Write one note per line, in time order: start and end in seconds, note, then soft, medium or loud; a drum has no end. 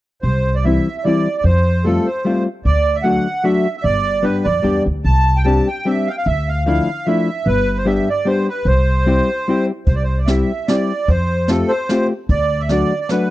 0.22 0.76 C2 medium
0.22 0.55 C5 medium
0.55 0.65 D5 medium
0.65 0.87 E3 soft
0.65 0.87 G3 soft
0.65 0.87 C4 soft
0.65 0.88 E4 medium
0.65 0.96 E5 medium
0.98 1.04 E5 soft
1.04 1.26 E3 soft
1.04 1.27 G3 soft
1.04 1.28 C4 soft
1.04 1.28 E4 medium
1.04 1.36 D5 medium
1.38 1.44 D5 soft
1.44 1.96 F2 medium
1.44 1.86 C5 medium
1.84 2.06 G3 soft
1.84 2.07 A3 soft
1.84 2.08 C4 soft
1.84 2.08 F4 medium
1.84 2.07 A4 medium
2.06 2.43 C5 medium
2.25 2.46 G3 medium
2.25 2.47 A3 soft
2.25 2.47 C4 soft
2.25 2.47 F4 medium
2.65 3.17 D2 medium
2.65 2.96 D5 medium
2.95 3.04 E5 medium
3.02 3.26 F#3 soft
3.02 3.26 A3 soft
3.02 3.26 D4 soft
3.02 3.27 F#4 medium
3.02 3.44 F#5 medium
3.44 3.66 F#3 medium
3.44 3.66 A3 soft
3.44 3.66 D4 soft
3.44 3.66 F#4 medium
3.44 3.76 E5 medium
3.77 3.84 E5 medium
3.83 4.24 G1 medium
3.83 4.25 D5 medium
4.22 4.45 G3 medium
4.22 4.45 B3 soft
4.22 4.46 D4 soft
4.22 4.46 G4 medium
4.22 4.46 B4 medium
4.44 4.62 F2 medium
4.44 4.83 D5 medium
4.62 4.84 E2 soft
4.62 4.86 G3 soft
4.62 4.86 B3 soft
4.62 4.86 D4 soft
4.62 4.86 G4 medium
4.86 5.03 D2 medium
5.04 5.57 C2 medium
5.04 5.37 A5 loud
5.36 5.46 G5 medium
5.44 5.67 G3 soft
5.44 5.68 C4 soft
5.44 5.68 D4 soft
5.44 5.68 G4 medium
5.44 5.68 A5 medium
5.67 5.86 G5 medium
5.85 6.08 G3 soft
5.85 6.08 C4 soft
5.85 6.08 D4 soft
5.85 6.08 G4 soft
5.85 6.09 E5 medium
6.07 6.12 F5 medium
6.07 6.16 G5 medium
6.18 6.27 F5 medium
6.26 6.78 D2 medium
6.26 6.49 E5 medium
6.48 6.64 F5 medium
6.65 6.88 F3 medium
6.65 6.88 A3 soft
6.65 6.89 D4 soft
6.65 6.89 E4 medium
6.65 7.07 F5 medium
7.06 7.28 F3 soft
7.06 7.29 A3 soft
7.06 7.29 D4 soft
7.06 7.29 E4 soft
7.06 7.47 E5 medium
7.46 7.98 G1 medium
7.46 7.78 B4 medium
7.77 7.87 C5 medium
7.85 8.07 G3 medium
7.85 8.08 B3 soft
7.85 8.08 D4 medium
7.85 8.08 G4 medium
7.85 8.09 E5 medium
8.10 8.27 D5 medium
8.25 8.47 G3 medium
8.25 8.48 B3 soft
8.25 8.48 D4 soft
8.25 8.48 G4 medium
8.25 8.47 C5 medium
8.49 8.67 B4 medium
8.65 9.18 C2 medium
8.65 9.66 C5 medium
9.06 9.28 G3 medium
9.06 9.29 C4 soft
9.06 9.29 E4 soft
9.06 9.29 G4 medium
9.48 9.70 G3 medium
9.48 9.70 C4 medium
9.48 9.70 E4 soft
9.48 9.71 G4 medium
9.87 10.40 C2 medium
9.87 9.95 C5 medium
9.87 kick medium
9.87 closed hi-hat soft
9.95 10.03 D5 medium
10.03 10.20 C5 medium
10.18 10.28 D5 medium
10.26 10.50 G3 medium
10.26 10.51 C4 soft
10.26 10.51 E4 soft
10.26 10.51 G4 soft
10.26 10.69 E5 medium
10.26 snare soft
10.26 closed hi-hat soft
10.68 10.91 G3 soft
10.68 10.91 C4 soft
10.68 10.92 E4 soft
10.68 10.92 G4 medium
10.68 11.10 D5 medium
10.68 snare soft
10.68 closed hi-hat soft
11.08 11.61 F2 medium
11.08 11.51 C5 medium
11.08 kick medium
11.08 closed hi-hat soft
11.48 11.71 A3 medium
11.48 11.71 C4 soft
11.48 11.72 F4 soft
11.48 11.72 G4 medium
11.48 11.71 A4 medium
11.48 snare soft
11.48 closed hi-hat soft
11.68 12.07 C5 medium
11.89 12.12 A3 soft
11.89 12.12 C4 soft
11.89 12.12 F4 soft
11.89 12.12 G4 medium
11.89 snare soft
11.89 closed hi-hat soft
12.29 12.81 D2 medium
12.29 12.62 D5 medium
12.29 kick medium
12.29 closed hi-hat soft
12.60 12.69 E5 medium
12.69 12.92 F#3 medium
12.69 12.92 A3 medium
12.69 12.92 D4 soft
12.69 12.93 F#4 soft
12.69 12.99 D5 medium
12.69 snare soft
12.69 closed hi-hat soft
13.01 13.10 D5 medium
13.09 13.30 F#3 soft
13.09 13.30 A3 soft
13.09 13.30 D4 medium
13.09 13.30 B4 medium
13.09 snare soft
13.09 closed hi-hat soft
13.13 13.30 F#4 medium